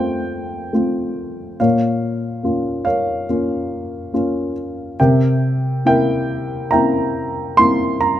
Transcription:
grand piano
Already playing: F2 A3 C4 F4 C5 F5 G5 A5
0.73 A3 C4 F4
1.60 A#2 A#4 C#5 F5
2.43 A#3 C#4 F4
2.85 A#4 C#5 F5
3.29 A#3 C#4 F4
4.13 A#3 C#4 F4
5.00 C3 A#4 E5 G5
5.85 A#3 C4 E4 A#4 E5 G5
6.71 A#3 C4 E4 E5 G5 A#5
7.57 A#3 C4 E4 C6
8.01 A#5

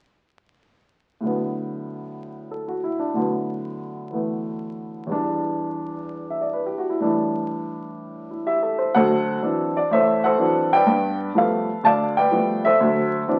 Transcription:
upright piano
1.21 A2 D3 F#3
1.26 B3
2.51 A4
2.68 F#4
2.84 E4
2.99 D4
3.14 A2 D3 F#3
3.19 B3
4.11 E3 A3 B3
5.07 E2 E3 G3
5.12 D4
6.30 E5
6.41 D5
6.53 B4
6.66 G4
6.78 F#4
6.90 E4
7.00 A2 E3 G3 D4
8.31 E4
8.46 G4 E5
8.63 A4
8.78 C5
8.95 D2 F#3 A4 C5 F#5
9.42 E3 F#3 C4 D4
9.77 D5
9.91 A1 A4 C5 E5
10.24 A4 C5 F#5
10.38 E3 F#3 C4 D4
10.73 B4 D5 G5
10.86 G2 B3
11.35 F3 G3 A3 B3 A4 B4 F5
11.83 D2 D5 F5 A5
12.17 B4 D5 G5
12.31 F3 G3 A3 B3
12.65 A4 C5 E5
12.80 D2 F#3
13.28 E3 F#3 C4 D4

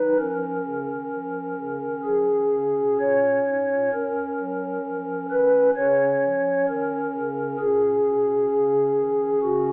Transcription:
pipe organ
Already playing: D#3 D#4 B4
0.18 F3 C#4 A#4
0.65 C#3
0.89 D#3
1.12 F3
1.58 C#3
1.82 D#3
2.04 F3 G#4
2.27 D#3
2.52 C#3
2.77 B2
3.00 A#2 C#5
3.47 G#2
3.71 A#2
3.92 F#2 C#4 A#4
4.39 F#3
4.86 F3
5.31 D#3 B4
5.77 C#3 C#4 C#5
6.23 F3
6.68 D#3 A#4
7.15 C#3
7.59 A#2 C#4 G#4
8.06 B2
8.50 C#3
8.98 D#3
9.42 C#3 F#4

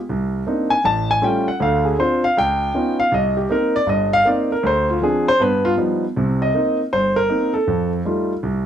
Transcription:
grand piano
0.09 C2
0.47 A#3 C4 D4 D#4
0.70 G#5
0.84 A1 A5
1.11 G#5
1.21 G3 A3 C#4 F4 G5
1.48 F#5
1.60 D2 D3 F5
1.85 G#4
1.98 C4 D4 F4 C5
2.24 F5
2.37 C#2 G5
2.74 B3 C#4 D#4 F4
3.00 F5
3.12 C2 D#5
3.37 G4
3.49 A#3 C4 D#4 A#4
3.76 D5
3.86 G1 G2 D#5
4.13 F5
4.25 A#3 C4 D#4 D5
4.52 A#4
4.63 D2 C5
4.90 F4
5.01 F3 C4 D4 G#4
5.28 C5
5.40 G2 B3 B4
5.65 F4
5.77 F3 G3 B3 D#4
6.17 C2 C3
6.42 D#5
6.54 A#3 C4 D#4
6.93 G1 C5
7.16 A#4
7.29 A#3 C4 D#4
7.54 A4
7.67 F2
8.05 G3 A3 D#4 F4
8.43 C2

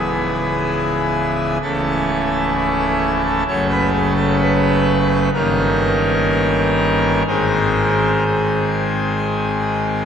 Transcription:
pipe organ
Already playing: C#1 C#2 E3 B3 E4 G#4
1.62 C#1 C#2 E3 A3 C#4 A4
2.55 E4
3.24 A4
3.47 F#1 F#2 C#3 A3 C#4 C#5
3.70 B4
3.93 G#4
4.16 A4
4.39 B4
5.33 G1 G2 D#3 A#3 C#4 A#4
7.27 G#1 G#2 D#3 G#3 C4 A#4
8.26 G#4

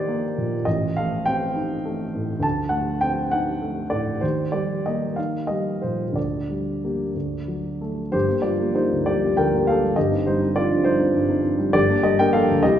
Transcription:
upright piano
Already playing: D#2 A#3 D#4 G4 C5 D5 D#5
0.08 A#3
0.38 A#2
0.65 A1 D#5
0.97 A3 F5
1.26 C4 G5
1.56 D#4
1.85 A3
2.15 A2
2.40 D2 A5
2.69 A3 F#5
3.01 C4 G5
3.31 D#4 F#5
3.62 A3
3.90 A2 D5
4.21 D#2 C5
4.52 G3 D5
4.86 A#3 D#5
5.16 D#4 F5
5.47 G3 D#5
5.82 A#2 C5
6.12 D2 D5
6.50 G3
6.84 A#3 G4
7.15 D2
7.48 F#3
7.81 A3 A4
8.12 G1 G4 C5
8.28 A#3
8.42 G3 F4 D5
8.60 A#3 G4
8.75 A#3 D#4 G4 C5
8.92 D2
9.06 G3 G4 D5
9.24 A#3 G4
9.37 D2 A#4 G5
9.53 A#3 G4
9.67 A#3 G4 A4 F5
9.83 G3
9.96 G1 G4 D#5
10.11 C4 D#4
10.26 G3 D#4 C5
10.42 C4 D#4
10.56 C4 D#4 F4 D5
10.71 G2
10.84 G3 D#4 C5
11.00 C4 D#4
11.14 G2
11.29 C4 D#4
11.41 C4 D#4
11.58 G3
11.73 G1 G4 D5
11.89 A#3 D4
12.03 G3 G4 D#5
12.19 A#3 D4 A#4 G5
12.33 A#3 D4 A4 F5
12.50 D2
12.63 C2 G4 D#5

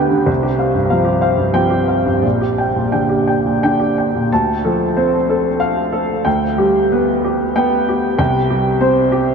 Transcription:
grand piano
Already playing: D2 D3 B3 G4 B4 G5
0.11 D3
0.26 C2 C5
0.43 G4
0.59 C5 F5
0.74 G2
0.90 F3 C4 F5
1.05 G4
1.21 C5 F5
1.37 G2
1.53 F3 C4 G5
1.70 G4
1.88 C5 F5
2.06 G2
2.21 A#1 D5
2.41 G4
2.58 D5 G5
2.76 A#2
2.92 D3 D4 G5
3.09 G4
3.27 D5 G5
3.46 A#2
3.63 D3 D4 G5
3.79 G4
3.98 D5 G5
4.15 A#2
4.32 D2 A5
4.65 F3 A4
4.97 C4 C5
5.30 A4
5.60 F5
5.93 A4
6.25 D2 G5
6.58 G3 G4
6.92 B3 B4
7.24 G4
7.56 B3 G5
7.88 G4
8.19 C2 G5
8.50 G3 G4
8.81 C4 C5
9.12 G4

